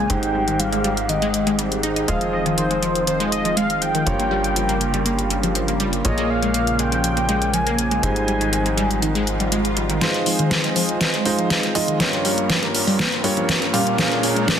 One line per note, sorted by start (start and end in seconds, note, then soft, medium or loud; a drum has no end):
0.00 4.03 G#3 medium
0.00 0.11 G#5 loud
0.10 2.06 G#1 medium
0.10 2.05 G#2 medium
0.10 4.03 D#3 medium
0.10 2.05 G#3 medium
0.10 0.19 G#3 medium
0.10 4.03 C4 medium
0.10 2.05 D#4 medium
0.10 2.05 G4 medium
0.10 2.06 G4 medium
0.10 2.05 C5 medium
0.10 0.61 G5 loud
0.10 closed hi-hat medium
0.23 closed hi-hat soft
0.35 0.40 G3 medium
0.48 0.56 D#3 medium
0.48 closed hi-hat soft
0.59 0.68 G3 medium
0.59 1.10 F5 medium
0.59 closed hi-hat medium
0.72 0.81 G#3 medium
0.72 closed hi-hat soft
0.84 0.93 G3 medium
0.84 closed hi-hat medium
0.97 closed hi-hat soft
1.09 1.18 D#3 medium
1.09 1.59 D#5 medium
1.09 closed hi-hat medium
1.22 1.30 G#3 loud
1.22 closed hi-hat soft
1.34 closed hi-hat medium
1.47 1.55 G#3 loud
1.47 closed hi-hat soft
1.59 1.71 G3 medium
1.59 closed hi-hat medium
1.72 closed hi-hat soft
1.83 1.92 D#4 medium
1.83 closed hi-hat medium
1.96 2.04 D#4 medium
1.96 closed hi-hat soft
2.08 4.04 F1 medium
2.08 4.04 F3 medium
2.08 2.17 G#3 medium
2.08 4.04 C4 medium
2.08 4.04 F4 medium
2.08 7.99 F4 medium
2.08 4.04 G#4 medium
2.08 4.04 D#5 medium
2.08 2.19 F5 loud
2.08 closed hi-hat medium
2.21 closed hi-hat soft
2.33 2.38 F3 medium
2.33 2.44 D#5 medium
2.46 2.54 D#3 medium
2.46 closed hi-hat soft
2.58 2.63 D#3 medium
2.58 3.04 C5 medium
2.58 closed hi-hat medium
2.71 2.79 G#3 medium
2.71 closed hi-hat soft
2.82 2.91 F3 loud
2.82 closed hi-hat medium
2.95 closed hi-hat soft
3.07 3.16 D#3 medium
3.07 3.30 C5 loud
3.07 closed hi-hat medium
3.20 3.28 G#3 loud
3.20 closed hi-hat soft
3.32 3.55 D#5 loud
3.32 closed hi-hat medium
3.45 3.56 F3 medium
3.45 closed hi-hat soft
3.57 3.66 G#3 medium
3.57 3.83 F5 loud
3.57 closed hi-hat medium
3.70 closed hi-hat soft
3.82 3.87 F3 medium
3.82 5.80 G5 loud
3.82 closed hi-hat medium
3.94 4.03 D#3 medium
3.94 closed hi-hat soft
4.06 6.03 G1 medium
4.06 6.02 G2 medium
4.06 6.03 C#3 medium
4.06 4.12 F3 medium
4.06 6.03 G3 medium
4.06 6.02 A#3 medium
4.06 7.99 A#3 medium
4.06 6.02 F4 medium
4.06 6.02 G4 medium
4.06 6.02 C#5 medium
4.06 closed hi-hat medium
4.19 4.27 A#3 medium
4.19 closed hi-hat soft
4.31 4.40 G3 loud
4.44 closed hi-hat soft
4.56 4.65 F3 medium
4.56 closed hi-hat medium
4.69 4.77 A#3 medium
4.69 closed hi-hat soft
4.81 closed hi-hat medium
4.94 5.05 G3 medium
4.94 closed hi-hat soft
5.06 5.15 A#3 medium
5.06 closed hi-hat medium
5.19 closed hi-hat soft
5.30 5.36 G3 medium
5.30 closed hi-hat medium
5.43 5.52 F3 medium
5.43 closed hi-hat soft
5.55 5.61 F3 medium
5.55 closed hi-hat medium
5.68 5.76 A#3 medium
5.68 closed hi-hat soft
5.80 5.89 G3 loud
5.80 closed hi-hat medium
5.93 closed hi-hat soft
6.05 8.01 A#1 medium
6.05 8.00 A#2 medium
6.05 8.01 C#3 medium
6.05 9.98 F3 medium
6.05 6.14 F3 medium
6.05 8.00 A#3 medium
6.05 8.00 F4 medium
6.05 8.00 G#4 medium
6.05 8.00 C#5 medium
6.05 6.31 D#5 medium
6.05 closed hi-hat medium
6.18 6.26 A#3 loud
6.18 closed hi-hat soft
6.30 6.81 F5 loud
6.43 6.54 G#3 medium
6.43 closed hi-hat soft
6.54 6.63 A#3 medium
6.54 closed hi-hat medium
6.67 closed hi-hat soft
6.79 6.85 G#3 medium
6.79 7.55 G5 loud
6.79 closed hi-hat medium
6.92 7.00 F3 medium
6.92 closed hi-hat soft
7.04 7.09 F3 medium
7.04 closed hi-hat medium
7.17 7.25 A#3 medium
7.17 closed hi-hat soft
7.29 7.38 G#3 loud
7.29 closed hi-hat medium
7.42 closed hi-hat soft
7.54 7.63 F3 medium
7.54 8.03 G#5 loud
7.54 closed hi-hat medium
7.67 7.75 A#3 loud
7.67 closed hi-hat soft
7.79 closed hi-hat medium
7.91 8.02 G#3 medium
7.91 closed hi-hat soft
8.03 9.99 G#1 medium
8.03 9.99 G#2 medium
8.03 10.00 D#3 medium
8.03 9.99 G3 medium
8.03 8.12 G#3 medium
8.03 9.99 G#3 medium
8.03 10.00 C4 medium
8.03 10.00 D#4 medium
8.03 9.99 D#4 medium
8.03 9.99 C5 medium
8.03 9.48 G#5 loud
8.03 closed hi-hat loud
8.16 closed hi-hat soft
8.28 8.33 G3 medium
8.28 closed hi-hat soft
8.41 8.49 D#3 medium
8.41 closed hi-hat soft
8.53 8.58 D#3 medium
8.53 closed hi-hat medium
8.66 8.74 G#3 medium
8.66 closed hi-hat soft
8.77 8.86 G3 loud
8.77 closed hi-hat medium
8.91 closed hi-hat soft
9.02 9.11 D#3 medium
9.02 closed hi-hat loud
9.02 swell medium
9.15 9.23 G#3 loud
9.15 closed hi-hat soft
9.27 closed hi-hat medium
9.40 9.51 G3 medium
9.40 closed hi-hat soft
9.52 9.61 G#3 medium
9.52 closed hi-hat medium
9.65 closed hi-hat soft
9.77 9.82 G3 medium
9.77 closed hi-hat medium
9.89 9.98 D#3 medium
9.89 closed hi-hat soft
10.01 11.98 F3 medium
10.01 10.10 G#3 medium
10.01 11.23 G#3 medium
10.01 11.98 C4 medium
10.01 11.23 D#4 medium
10.01 11.98 D#4 medium
10.01 11.23 F4 medium
10.01 11.98 G#4 medium
10.01 11.23 C5 medium
10.01 kick loud
10.01 snare soft
10.01 closed hi-hat medium
10.01 riser medium
10.14 closed hi-hat soft
10.26 10.32 F3 medium
10.26 open hi-hat loud
10.39 10.47 D#3 medium
10.39 closed hi-hat soft
10.51 10.56 D#3 medium
10.51 kick loud
10.51 snare soft
10.51 closed hi-hat medium
10.64 10.72 G#3 medium
10.64 closed hi-hat soft
10.76 10.85 F3 medium
10.76 open hi-hat loud
10.89 closed hi-hat soft
11.01 11.10 D#3 medium
11.01 kick loud
11.01 snare soft
11.01 closed hi-hat loud
11.14 11.22 G#3 loud
11.14 closed hi-hat soft
11.25 11.72 G#3 medium
11.25 11.72 D#4 medium
11.25 11.72 F4 medium
11.25 11.72 C5 medium
11.25 open hi-hat loud
11.38 11.50 F3 medium
11.38 closed hi-hat soft
11.50 11.59 G#3 medium
11.50 kick loud
11.50 snare soft
11.50 closed hi-hat medium
11.63 closed hi-hat soft
11.75 11.80 F3 medium
11.75 11.97 G#3 medium
11.75 11.97 D#4 medium
11.75 11.97 F4 medium
11.75 11.97 D#5 medium
11.75 open hi-hat loud
11.88 11.96 D#3 medium
11.88 closed hi-hat soft
12.00 13.21 G2 medium
12.00 12.05 F3 medium
12.00 13.96 G3 medium
12.00 13.21 A#3 medium
12.00 13.96 C#4 medium
12.00 14.60 F4 medium
12.00 13.21 F4 medium
12.00 13.21 G4 medium
12.00 14.60 A#4 medium
12.00 13.21 C#5 medium
12.00 kick loud
12.00 snare medium
12.00 closed hi-hat medium
12.13 12.21 A#3 medium
12.13 closed hi-hat soft
12.25 12.34 G3 loud
12.25 open hi-hat loud
12.38 closed hi-hat soft
12.49 12.58 F3 medium
12.49 kick loud
12.49 snare medium
12.49 closed hi-hat loud
12.62 12.71 A#3 loud
12.62 closed hi-hat soft
12.75 open hi-hat loud
12.87 12.99 G3 medium
12.87 open hi-hat medium
12.99 13.08 A#3 medium
12.99 kick loud
12.99 snare medium
12.99 closed hi-hat medium
13.12 closed hi-hat soft
13.24 13.71 G2 medium
13.24 13.29 G3 medium
13.24 13.71 A#3 medium
13.24 13.71 F4 medium
13.24 13.71 G4 medium
13.24 13.71 C#5 medium
13.24 open hi-hat loud
13.37 13.45 F3 medium
13.37 closed hi-hat soft
13.49 13.54 F3 medium
13.49 kick loud
13.49 snare medium
13.49 closed hi-hat medium
13.62 13.70 A#3 medium
13.62 closed hi-hat soft
13.73 13.96 A#2 medium
13.73 13.82 G3 loud
13.73 13.96 A#3 medium
13.73 13.96 F4 medium
13.73 13.96 G4 medium
13.73 13.96 F5 medium
13.73 open hi-hat loud
13.87 closed hi-hat soft
13.98 14.60 A#2 medium
13.98 14.07 F3 medium
13.98 14.60 G#3 medium
13.98 14.60 A#3 medium
13.98 14.60 C#4 medium
13.98 14.60 F4 medium
13.98 14.60 G#4 medium
13.98 14.60 C#5 medium
13.98 kick loud
13.98 snare medium
13.98 closed hi-hat medium
14.11 14.19 A#3 loud
14.11 closed hi-hat soft
14.23 open hi-hat loud
14.36 14.47 G#3 medium
14.36 closed hi-hat soft
14.48 14.57 A#3 medium
14.48 kick loud
14.48 snare medium
14.48 closed hi-hat medium